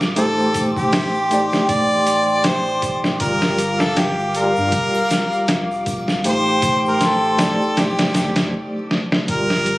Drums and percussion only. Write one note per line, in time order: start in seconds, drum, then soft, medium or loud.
0.01 snare soft
0.01 shaker soft
0.16 closed hi-hat medium
0.16 shaker soft
0.39 shaker soft
0.54 kick medium
0.54 closed hi-hat medium
0.54 triangle medium
0.54 shaker medium
0.76 kick loud
0.76 shaker soft
0.93 snare loud
0.93 open hi-hat medium
0.93 shaker soft
1.15 shaker soft
1.31 closed hi-hat medium
1.31 shaker medium
1.53 snare soft
1.53 shaker soft
1.69 kick loud
1.69 closed hi-hat medium
1.69 shaker medium
1.91 shaker soft
2.07 closed hi-hat medium
2.07 shaker medium
2.29 shaker soft
2.44 snare loud
2.44 closed hi-hat medium
2.44 shaker soft
2.67 shaker soft
2.82 kick medium
2.82 closed hi-hat medium
2.82 shaker medium
3.04 snare soft
3.04 shaker soft
3.20 kick loud
3.20 closed hi-hat medium
3.20 shaker medium
3.42 snare soft
3.42 shaker soft
3.58 closed hi-hat medium
3.58 shaker medium
3.80 snare soft
3.80 shaker soft
3.96 snare loud
3.96 closed hi-hat medium
3.96 shaker soft
4.18 shaker soft
4.34 closed hi-hat medium
4.34 shaker medium
4.56 shaker soft
4.72 kick loud
4.72 closed hi-hat medium
4.72 shaker soft
4.95 triangle medium
4.95 shaker soft
5.10 snare soft
5.10 closed hi-hat medium
5.10 shaker medium
5.33 shaker soft
5.48 snare loud
5.48 closed hi-hat medium
5.48 shaker soft
5.71 shaker soft
5.86 kick medium
5.86 closed hi-hat medium
5.86 triangle medium
5.86 shaker medium
6.08 snare soft
6.08 shaker soft
6.24 closed hi-hat medium
6.24 shaker soft
6.48 shaker soft
6.62 kick loud
6.62 closed hi-hat medium
6.62 triangle medium
6.62 shaker medium
6.86 shaker soft
7.01 snare soft
7.01 closed hi-hat medium
7.01 shaker soft
7.24 shaker soft
7.38 snare medium
7.38 closed hi-hat medium
7.38 shaker medium
7.61 shaker soft
7.77 snare medium
7.77 closed hi-hat medium
7.77 shaker medium
7.99 snare loud
7.99 closed hi-hat medium
7.99 shaker soft
8.14 snare loud
8.14 closed hi-hat medium
8.14 shaker medium
8.36 snare loud
8.36 closed hi-hat medium
8.36 shaker soft
8.91 snare medium
9.12 snare medium
9.28 kick loud
9.28 closed hi-hat medium
9.50 snare soft
9.66 closed hi-hat medium